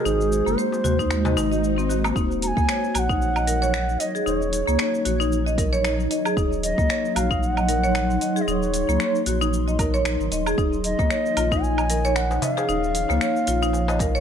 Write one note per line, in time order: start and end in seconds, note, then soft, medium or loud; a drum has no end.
0.00 2.12 G#3 medium
0.00 2.12 F#4 medium
0.00 2.12 C5 medium
0.05 0.43 G#1 loud
0.05 0.45 D#4 medium
0.05 0.60 G#4 medium
0.05 cabasa soft
0.21 cabasa soft
0.32 cabasa medium
0.46 0.56 F#1 medium
0.46 0.57 A#3 medium
0.46 darbuka ka soft
0.46 cabasa soft
0.58 0.72 C5 medium
0.58 1.37 C5 medium
0.58 cabasa soft
0.72 darbuka ka medium
0.72 cabasa soft
0.84 1.36 D#2 medium
0.84 0.98 F#4 medium
0.84 darbuka dum medium
0.84 cabasa medium
0.99 1.10 D#4 medium
0.99 kick medium
0.99 darbuka tek soft
0.99 cabasa soft
1.11 finger snap medium
1.11 swell medium
1.11 cabasa soft
1.25 1.36 D#5 medium
1.25 darbuka tek medium
1.25 darbuka dum medium
1.25 cabasa soft
1.37 2.13 G#1 medium
1.37 1.51 D#4 loud
1.37 darbuka tek medium
1.37 cabasa medium
1.52 1.58 D#5 medium
1.52 cabasa soft
1.64 cabasa soft
1.78 1.88 C4 medium
1.78 cabasa soft
1.89 2.03 F#4 medium
1.89 cabasa medium
2.04 2.15 A#3 medium
2.04 darbuka tek medium
2.04 cabasa soft
2.04 low woodblock medium
2.16 2.53 D#1 medium
2.16 10.54 F#3 medium
2.16 2.56 D#4 medium
2.16 14.20 D#4 medium
2.16 6.33 C#5 medium
2.16 kick loud
2.16 cabasa soft
2.31 cabasa soft
2.42 2.48 A#5 loud
2.42 open hi-hat medium
2.42 cabasa medium
2.47 2.95 G#5 loud
2.57 2.67 C#2 medium
2.57 2.67 A#3 medium
2.57 kick loud
2.57 cabasa soft
2.68 2.83 C#5 medium
2.68 finger snap loud
2.68 cabasa soft
2.84 cabasa soft
2.95 3.97 A#1 medium
2.95 3.09 F#4 medium
2.95 3.00 G#5 loud
2.95 open hi-hat medium
2.95 cabasa medium
2.95 low woodblock medium
2.99 4.01 F#5 loud
3.09 3.21 D#4 medium
3.09 kick loud
3.09 cabasa soft
3.22 cabasa soft
3.36 3.47 D#5 medium
3.36 cabasa soft
3.36 low woodblock medium
3.47 3.56 A#4 medium
3.47 open hi-hat medium
3.47 cabasa medium
3.62 3.99 C#5 loud
3.62 cabasa soft
3.74 finger snap loud
3.74 cabasa soft
3.89 cabasa soft
4.00 4.26 D#5 medium
4.00 4.09 D#5 medium
4.00 open hi-hat medium
4.00 cabasa medium
4.15 4.26 G#4 medium
4.15 cabasa soft
4.26 4.64 D#1 loud
4.26 4.66 D#4 medium
4.26 5.28 C#5 medium
4.26 cabasa soft
4.42 cabasa soft
4.53 open hi-hat medium
4.53 cabasa medium
4.67 4.77 C#2 medium
4.67 4.78 A#3 medium
4.67 cabasa soft
4.79 4.93 C#5 medium
4.79 finger snap loud
4.79 cabasa soft
4.95 cabasa soft
5.05 6.08 A#1 medium
5.05 5.19 F#4 medium
5.05 open hi-hat medium
5.05 cabasa medium
5.20 5.31 D#4 loud
5.20 cabasa soft
5.32 cabasa soft
5.46 5.57 D#5 medium
5.46 cabasa soft
5.58 5.67 A#4 medium
5.58 kick loud
5.58 open hi-hat medium
5.58 cabasa medium
5.73 6.09 C#5 loud
5.73 cabasa soft
5.85 finger snap loud
5.85 cabasa soft
6.00 cabasa soft
6.11 6.19 D#5 medium
6.11 open hi-hat medium
6.11 cabasa medium
6.25 6.36 G#4 medium
6.25 cabasa soft
6.25 low woodblock medium
6.37 6.74 D#1 loud
6.37 6.77 D#4 medium
6.37 10.54 C6 medium
6.37 kick loud
6.37 cabasa soft
6.53 cabasa soft
6.63 7.17 D#5 loud
6.63 open hi-hat medium
6.63 cabasa medium
6.78 6.88 C#2 medium
6.78 6.88 A#3 medium
6.78 kick loud
6.78 cabasa soft
6.89 7.04 C#5 medium
6.89 finger snap loud
6.89 cabasa soft
7.05 cabasa soft
7.15 8.18 A#1 medium
7.15 7.30 F#4 medium
7.15 7.42 F5 loud
7.15 open hi-hat medium
7.15 cabasa medium
7.15 low woodblock medium
7.31 7.42 D#4 loud
7.31 kick loud
7.31 cabasa soft
7.41 8.43 F#5 loud
7.41 cabasa soft
7.57 7.68 D#5 medium
7.57 cabasa soft
7.57 low woodblock medium
7.69 7.77 A#4 medium
7.69 open hi-hat medium
7.69 cabasa medium
7.84 8.20 C#5 loud
7.84 cabasa soft
7.95 finger snap loud
7.95 cabasa soft
8.10 cabasa soft
8.21 8.30 D#5 medium
8.21 open hi-hat medium
8.21 cabasa medium
8.36 8.47 G#4 medium
8.36 cabasa soft
8.41 8.46 D#5 medium
8.46 8.85 D#1 loud
8.46 8.87 D#4 medium
8.46 8.52 D#5 medium
8.46 cabasa soft
8.51 9.52 C#5 medium
8.63 cabasa soft
8.74 open hi-hat medium
8.74 cabasa medium
8.88 8.98 C#2 medium
8.88 8.99 A#3 medium
8.88 cabasa soft
9.00 9.14 C#5 medium
9.00 finger snap loud
9.00 cabasa soft
9.15 cabasa soft
9.26 10.05 A#1 medium
9.26 9.41 F#4 medium
9.26 open hi-hat medium
9.26 cabasa medium
9.41 9.52 D#4 medium
9.41 cabasa soft
9.54 cabasa soft
9.68 9.79 D#5 medium
9.68 cabasa soft
9.79 9.88 A#4 medium
9.79 kick loud
9.79 open hi-hat medium
9.79 cabasa medium
9.79 low woodblock medium
9.94 10.31 C#5 loud
9.94 cabasa soft
10.05 10.18 A#1 loud
10.05 finger snap medium
10.05 cabasa soft
10.20 10.30 G#1 medium
10.20 cabasa soft
10.31 10.54 D#1 loud
10.31 10.40 D#5 medium
10.31 open hi-hat medium
10.31 cabasa medium
10.46 10.58 G#4 medium
10.46 cabasa soft
10.46 low woodblock medium
10.58 10.95 D#1 loud
10.58 14.20 F3 medium
10.58 10.98 D#4 medium
10.58 14.20 C#5 medium
10.58 kick loud
10.58 cabasa soft
10.73 cabasa soft
10.84 11.64 D#5 loud
10.84 open hi-hat medium
10.84 cabasa medium
10.99 11.09 C#2 medium
10.99 11.10 A#3 medium
10.99 kick loud
10.99 darbuka ka soft
10.99 cabasa soft
11.10 11.25 C#5 medium
11.10 finger snap loud
11.10 cabasa soft
11.26 cabasa soft
11.37 12.39 A#1 medium
11.37 11.51 F4 medium
11.37 open hi-hat medium
11.37 cabasa medium
11.37 low woodblock medium
11.52 11.63 D#4 loud
11.52 kick loud
11.52 darbuka tek soft
11.52 cabasa soft
11.63 12.18 G#5 loud
11.63 cabasa soft
11.78 11.89 D#5 medium
11.78 cabasa soft
11.78 low woodblock medium
11.90 11.98 A#4 medium
11.90 open hi-hat medium
11.90 cabasa medium
12.05 12.41 C#5 loud
12.05 cabasa soft
12.16 12.44 F#5 loud
12.16 finger snap loud
12.16 cabasa soft
12.31 darbuka tek medium
12.31 cabasa soft
12.42 12.51 D#5 medium
12.42 12.55 E5 loud
12.42 open hi-hat medium
12.42 darbuka ka medium
12.42 darbuka dum medium
12.42 cabasa medium
12.55 12.68 G#4 medium
12.55 14.20 F5 loud
12.55 darbuka tek medium
12.55 cabasa soft
12.69 13.06 D#1 medium
12.69 13.08 D#4 medium
12.69 cabasa soft
12.84 cabasa soft
12.95 open hi-hat medium
12.95 cabasa medium
13.09 13.19 C#2 loud
13.09 13.20 A#3 medium
13.09 darbuka ka medium
13.09 cabasa soft
13.21 13.35 C#5 medium
13.21 finger snap loud
13.21 cabasa soft
13.36 cabasa soft
13.47 14.20 A#1 medium
13.47 13.62 F4 medium
13.47 open hi-hat medium
13.47 cabasa medium
13.62 13.73 D#4 loud
13.62 darbuka ka soft
13.62 cabasa soft
13.73 darbuka ka medium
13.73 cabasa soft
13.88 14.00 D#5 medium
13.88 darbuka tek medium
13.88 cabasa soft
13.99 14.09 A#4 medium
13.99 kick loud
13.99 open hi-hat medium
13.99 darbuka tek medium
13.99 cabasa medium
14.15 14.20 C#5 loud
14.15 cabasa soft